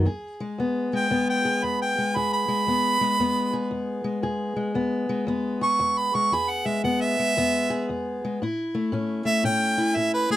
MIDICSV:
0, 0, Header, 1, 3, 480
1, 0, Start_track
1, 0, Key_signature, 4, "major"
1, 0, Tempo, 519931
1, 69, Time_signature, 4, 2, 24, 8
1, 9571, End_track
2, 0, Start_track
2, 0, Title_t, "Harmonica"
2, 0, Program_c, 0, 22
2, 878, Note_on_c, 0, 79, 88
2, 1183, Note_off_c, 0, 79, 0
2, 1194, Note_on_c, 0, 79, 101
2, 1514, Note_on_c, 0, 83, 84
2, 1527, Note_off_c, 0, 79, 0
2, 1666, Note_off_c, 0, 83, 0
2, 1681, Note_on_c, 0, 79, 79
2, 1999, Note_on_c, 0, 83, 87
2, 2013, Note_off_c, 0, 79, 0
2, 2149, Note_off_c, 0, 83, 0
2, 2153, Note_on_c, 0, 83, 117
2, 3553, Note_off_c, 0, 83, 0
2, 5197, Note_on_c, 0, 85, 95
2, 5519, Note_on_c, 0, 83, 89
2, 5533, Note_off_c, 0, 85, 0
2, 5671, Note_on_c, 0, 85, 96
2, 5685, Note_off_c, 0, 83, 0
2, 5852, Note_on_c, 0, 83, 105
2, 5866, Note_off_c, 0, 85, 0
2, 6001, Note_on_c, 0, 78, 86
2, 6015, Note_off_c, 0, 83, 0
2, 6150, Note_on_c, 0, 76, 89
2, 6164, Note_off_c, 0, 78, 0
2, 6305, Note_off_c, 0, 76, 0
2, 6313, Note_on_c, 0, 78, 85
2, 6469, Note_on_c, 0, 76, 108
2, 6483, Note_off_c, 0, 78, 0
2, 7400, Note_off_c, 0, 76, 0
2, 8549, Note_on_c, 0, 76, 106
2, 8704, Note_off_c, 0, 76, 0
2, 8722, Note_on_c, 0, 79, 100
2, 9195, Note_on_c, 0, 76, 96
2, 9209, Note_off_c, 0, 79, 0
2, 9347, Note_off_c, 0, 76, 0
2, 9358, Note_on_c, 0, 71, 93
2, 9509, Note_off_c, 0, 71, 0
2, 9520, Note_on_c, 0, 68, 119
2, 9571, Note_off_c, 0, 68, 0
2, 9571, End_track
3, 0, Start_track
3, 0, Title_t, "Steel-string acoustic guitar"
3, 0, Program_c, 1, 25
3, 50, Note_on_c, 1, 40, 80
3, 58, Note_on_c, 1, 68, 64
3, 373, Note_on_c, 1, 56, 63
3, 504, Note_off_c, 1, 40, 0
3, 538, Note_on_c, 1, 40, 70
3, 551, Note_on_c, 1, 59, 64
3, 856, Note_off_c, 1, 56, 0
3, 860, Note_on_c, 1, 56, 64
3, 988, Note_off_c, 1, 40, 0
3, 1019, Note_on_c, 1, 40, 82
3, 1022, Note_off_c, 1, 59, 0
3, 1025, Note_on_c, 1, 59, 71
3, 1336, Note_off_c, 1, 68, 0
3, 1339, Note_on_c, 1, 68, 74
3, 1469, Note_off_c, 1, 40, 0
3, 1504, Note_on_c, 1, 40, 78
3, 1827, Note_off_c, 1, 56, 0
3, 1831, Note_on_c, 1, 56, 62
3, 1951, Note_off_c, 1, 40, 0
3, 1991, Note_on_c, 1, 40, 73
3, 1993, Note_off_c, 1, 68, 0
3, 1997, Note_on_c, 1, 68, 67
3, 2288, Note_off_c, 1, 56, 0
3, 2292, Note_on_c, 1, 56, 64
3, 2434, Note_off_c, 1, 40, 0
3, 2462, Note_on_c, 1, 40, 76
3, 2472, Note_off_c, 1, 59, 0
3, 2476, Note_on_c, 1, 59, 67
3, 2776, Note_off_c, 1, 56, 0
3, 2779, Note_on_c, 1, 56, 68
3, 2910, Note_off_c, 1, 40, 0
3, 2951, Note_on_c, 1, 40, 83
3, 2952, Note_off_c, 1, 59, 0
3, 2955, Note_on_c, 1, 59, 71
3, 3259, Note_off_c, 1, 68, 0
3, 3262, Note_on_c, 1, 68, 70
3, 3395, Note_off_c, 1, 40, 0
3, 3423, Note_on_c, 1, 40, 73
3, 3729, Note_off_c, 1, 56, 0
3, 3732, Note_on_c, 1, 56, 62
3, 3871, Note_off_c, 1, 40, 0
3, 3902, Note_on_c, 1, 40, 76
3, 3903, Note_off_c, 1, 68, 0
3, 3907, Note_on_c, 1, 68, 76
3, 4210, Note_off_c, 1, 56, 0
3, 4213, Note_on_c, 1, 56, 61
3, 4350, Note_off_c, 1, 40, 0
3, 4380, Note_on_c, 1, 40, 82
3, 4383, Note_off_c, 1, 59, 0
3, 4387, Note_on_c, 1, 59, 67
3, 4698, Note_off_c, 1, 56, 0
3, 4702, Note_on_c, 1, 56, 72
3, 4830, Note_off_c, 1, 40, 0
3, 4862, Note_on_c, 1, 40, 89
3, 4871, Note_off_c, 1, 59, 0
3, 4875, Note_on_c, 1, 59, 77
3, 5171, Note_off_c, 1, 68, 0
3, 5183, Note_on_c, 1, 68, 66
3, 5311, Note_off_c, 1, 40, 0
3, 5347, Note_on_c, 1, 40, 83
3, 5659, Note_off_c, 1, 56, 0
3, 5676, Note_on_c, 1, 56, 63
3, 5793, Note_off_c, 1, 40, 0
3, 5811, Note_off_c, 1, 68, 0
3, 5817, Note_off_c, 1, 56, 0
3, 5835, Note_on_c, 1, 40, 82
3, 5846, Note_on_c, 1, 68, 70
3, 6144, Note_on_c, 1, 56, 58
3, 6277, Note_off_c, 1, 40, 0
3, 6306, Note_off_c, 1, 59, 0
3, 6312, Note_on_c, 1, 40, 76
3, 6317, Note_on_c, 1, 59, 67
3, 6620, Note_off_c, 1, 56, 0
3, 6641, Note_on_c, 1, 56, 63
3, 6756, Note_off_c, 1, 40, 0
3, 6793, Note_off_c, 1, 59, 0
3, 6804, Note_on_c, 1, 40, 88
3, 6809, Note_on_c, 1, 59, 72
3, 7099, Note_off_c, 1, 68, 0
3, 7110, Note_on_c, 1, 68, 79
3, 7242, Note_off_c, 1, 40, 0
3, 7285, Note_on_c, 1, 40, 73
3, 7589, Note_off_c, 1, 56, 0
3, 7612, Note_on_c, 1, 56, 61
3, 7723, Note_off_c, 1, 40, 0
3, 7735, Note_off_c, 1, 68, 0
3, 7746, Note_off_c, 1, 56, 0
3, 7759, Note_off_c, 1, 59, 0
3, 7771, Note_on_c, 1, 45, 72
3, 7780, Note_on_c, 1, 64, 75
3, 8074, Note_on_c, 1, 57, 64
3, 8206, Note_off_c, 1, 45, 0
3, 8235, Note_on_c, 1, 45, 82
3, 8244, Note_on_c, 1, 61, 63
3, 8531, Note_off_c, 1, 57, 0
3, 8542, Note_on_c, 1, 57, 61
3, 8678, Note_off_c, 1, 45, 0
3, 8706, Note_off_c, 1, 61, 0
3, 8712, Note_on_c, 1, 45, 88
3, 8717, Note_on_c, 1, 61, 73
3, 9023, Note_off_c, 1, 64, 0
3, 9027, Note_on_c, 1, 64, 74
3, 9156, Note_off_c, 1, 45, 0
3, 9194, Note_on_c, 1, 45, 80
3, 9499, Note_off_c, 1, 57, 0
3, 9511, Note_on_c, 1, 57, 62
3, 9571, Note_off_c, 1, 45, 0
3, 9571, Note_off_c, 1, 57, 0
3, 9571, Note_off_c, 1, 61, 0
3, 9571, Note_off_c, 1, 64, 0
3, 9571, End_track
0, 0, End_of_file